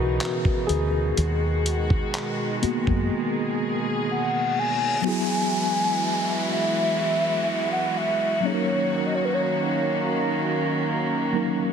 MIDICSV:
0, 0, Header, 1, 9, 480
1, 0, Start_track
1, 0, Tempo, 967742
1, 584, Time_signature, 4, 2, 24, 8
1, 5817, End_track
2, 0, Start_track
2, 0, Title_t, "Soft synth lead"
2, 0, Program_c, 0, 80
2, 2038, Note_on_c, 0, 78, 108
2, 2277, Note_on_c, 0, 80, 127
2, 2285, Note_off_c, 0, 78, 0
2, 3231, Note_off_c, 0, 80, 0
2, 3236, Note_on_c, 0, 76, 117
2, 3833, Note_on_c, 0, 78, 93
2, 3841, Note_off_c, 0, 76, 0
2, 3954, Note_on_c, 0, 76, 100
2, 3962, Note_off_c, 0, 78, 0
2, 4194, Note_on_c, 0, 73, 101
2, 4201, Note_off_c, 0, 76, 0
2, 4494, Note_on_c, 0, 75, 79
2, 4502, Note_off_c, 0, 73, 0
2, 4538, Note_on_c, 0, 73, 76
2, 4546, Note_off_c, 0, 75, 0
2, 4587, Note_on_c, 0, 71, 84
2, 4594, Note_off_c, 0, 73, 0
2, 4633, Note_on_c, 0, 73, 83
2, 4640, Note_off_c, 0, 71, 0
2, 4671, Note_off_c, 0, 73, 0
2, 5817, End_track
3, 0, Start_track
3, 0, Title_t, "Tine electric piano"
3, 0, Program_c, 1, 4
3, 0, Control_c, 1, 64, 127
3, 0, Note_on_c, 1, 52, 47
3, 0, Note_on_c, 1, 59, 44
3, 0, Note_on_c, 1, 63, 54
3, 0, Note_on_c, 1, 66, 96
3, 0, Note_on_c, 1, 68, 94
3, 0, Note_on_c, 1, 70, 84
3, 0, Note_on_c, 1, 71, 105
3, 332, Note_off_c, 1, 68, 0
3, 332, Note_on_c, 1, 68, 89
3, 353, Note_off_c, 1, 66, 0
3, 591, Note_off_c, 1, 70, 0
3, 591, Control_c, 1, 64, 0
3, 593, Note_off_c, 1, 52, 0
3, 594, Note_off_c, 1, 59, 0
3, 595, Note_off_c, 1, 63, 0
3, 595, Note_off_c, 1, 71, 0
3, 662, Control_c, 1, 64, 127
3, 1300, Note_on_c, 1, 58, 55
3, 1304, Note_on_c, 1, 59, 51
3, 1307, Note_on_c, 1, 66, 64
3, 1998, Note_off_c, 1, 68, 0
3, 2002, Note_off_c, 1, 58, 0
3, 2004, Note_off_c, 1, 59, 0
3, 2006, Note_off_c, 1, 66, 0
3, 2488, Note_on_c, 1, 54, 68
3, 2496, Note_on_c, 1, 59, 67
3, 2505, Note_on_c, 1, 66, 64
3, 2511, Control_c, 1, 64, 0
3, 2514, Note_on_c, 1, 64, 61
3, 2522, Note_on_c, 1, 68, 78
3, 2598, Control_c, 1, 64, 127
3, 4157, Note_off_c, 1, 54, 0
3, 4161, Note_off_c, 1, 59, 0
3, 4165, Note_off_c, 1, 66, 0
3, 4168, Note_on_c, 1, 54, 68
3, 4169, Note_off_c, 1, 64, 0
3, 4173, Note_off_c, 1, 68, 0
3, 4177, Note_on_c, 1, 58, 60
3, 4185, Note_on_c, 1, 61, 64
3, 4192, Control_c, 1, 64, 0
3, 4193, Note_on_c, 1, 63, 63
3, 4203, Note_on_c, 1, 68, 62
3, 4226, Note_off_c, 1, 68, 0
3, 4234, Note_on_c, 1, 70, 72
3, 4290, Control_c, 1, 64, 127
3, 5596, Note_off_c, 1, 54, 0
3, 5601, Note_off_c, 1, 58, 0
3, 5605, Note_off_c, 1, 61, 0
3, 5609, Note_off_c, 1, 63, 0
3, 5616, Note_on_c, 1, 54, 66
3, 5620, Note_on_c, 1, 58, 58
3, 5625, Note_on_c, 1, 61, 61
3, 5627, Note_off_c, 1, 70, 0
3, 5630, Note_on_c, 1, 63, 56
3, 5633, Note_on_c, 1, 70, 73
3, 5817, Note_off_c, 1, 54, 0
3, 5817, Note_off_c, 1, 58, 0
3, 5817, Note_off_c, 1, 61, 0
3, 5817, Note_off_c, 1, 63, 0
3, 5817, Note_off_c, 1, 70, 0
3, 5817, End_track
4, 0, Start_track
4, 0, Title_t, "String section"
4, 0, Program_c, 2, 48
4, 0, Note_on_c, 2, 47, 79
4, 0, Note_on_c, 2, 49, 84
4, 0, Note_on_c, 2, 52, 76
4, 0, Note_on_c, 2, 63, 89
4, 564, Note_off_c, 2, 49, 0
4, 564, Note_off_c, 2, 52, 0
4, 565, Note_off_c, 2, 63, 0
4, 583, Note_on_c, 2, 56, 76
4, 583, Note_on_c, 2, 66, 86
4, 584, Note_on_c, 2, 51, 77
4, 1534, Note_off_c, 2, 66, 0
4, 1544, Note_on_c, 2, 68, 90
4, 2484, Note_off_c, 2, 47, 0
4, 2484, Note_off_c, 2, 56, 0
4, 2485, Note_off_c, 2, 51, 0
4, 2494, Note_off_c, 2, 68, 0
4, 2505, Note_on_c, 2, 56, 79
4, 2505, Note_on_c, 2, 64, 80
4, 2507, Note_on_c, 2, 52, 90
4, 2507, Note_on_c, 2, 66, 92
4, 4168, Note_off_c, 2, 56, 0
4, 4168, Note_off_c, 2, 64, 0
4, 4169, Note_off_c, 2, 52, 0
4, 4186, Note_on_c, 2, 51, 91
4, 4186, Note_on_c, 2, 61, 83
4, 4187, Note_on_c, 2, 58, 85
4, 5817, Note_off_c, 2, 51, 0
4, 5817, Note_off_c, 2, 58, 0
4, 5817, Note_off_c, 2, 61, 0
4, 5817, Note_off_c, 2, 66, 0
4, 5817, End_track
5, 0, Start_track
5, 0, Title_t, "Fingered electric bass"
5, 0, Program_c, 3, 33
5, 0, Note_on_c, 3, 35, 82
5, 89, Note_off_c, 3, 35, 0
5, 344, Note_on_c, 3, 38, 78
5, 553, Note_off_c, 3, 38, 0
5, 585, Note_on_c, 3, 39, 103
5, 1003, Note_off_c, 3, 39, 0
5, 1425, Note_on_c, 3, 42, 82
5, 1529, Note_off_c, 3, 42, 0
5, 5817, End_track
6, 0, Start_track
6, 0, Title_t, "Downlifter"
6, 0, Program_c, 4, 103
6, 2506, Note_on_c, 4, 60, 87
6, 5817, Note_off_c, 4, 60, 0
6, 5817, End_track
7, 0, Start_track
7, 0, Title_t, "Reverse cymbal"
7, 0, Program_c, 5, 119
7, 1545, Note_on_c, 5, 60, 78
7, 2505, Note_off_c, 5, 60, 0
7, 5817, End_track
8, 0, Start_track
8, 0, Title_t, "Muted fingered electric bass strokes"
8, 1306, Note_on_c, 9, 29, 46
8, 1355, Note_off_c, 9, 29, 0
8, 5817, End_track
9, 0, Start_track
9, 0, Title_t, "Drums"
9, 102, Note_on_c, 9, 42, 62
9, 103, Note_on_c, 9, 39, 107
9, 152, Note_off_c, 9, 42, 0
9, 153, Note_off_c, 9, 39, 0
9, 223, Note_on_c, 9, 36, 81
9, 273, Note_off_c, 9, 36, 0
9, 344, Note_on_c, 9, 42, 58
9, 393, Note_off_c, 9, 42, 0
9, 583, Note_on_c, 9, 42, 70
9, 632, Note_off_c, 9, 42, 0
9, 823, Note_on_c, 9, 42, 76
9, 873, Note_off_c, 9, 42, 0
9, 944, Note_on_c, 9, 36, 81
9, 994, Note_off_c, 9, 36, 0
9, 1063, Note_on_c, 9, 42, 62
9, 1064, Note_on_c, 9, 39, 111
9, 1113, Note_off_c, 9, 42, 0
9, 1114, Note_off_c, 9, 39, 0
9, 1303, Note_on_c, 9, 42, 64
9, 1353, Note_off_c, 9, 42, 0
9, 1425, Note_on_c, 9, 36, 77
9, 1474, Note_off_c, 9, 36, 0
9, 5817, End_track
0, 0, End_of_file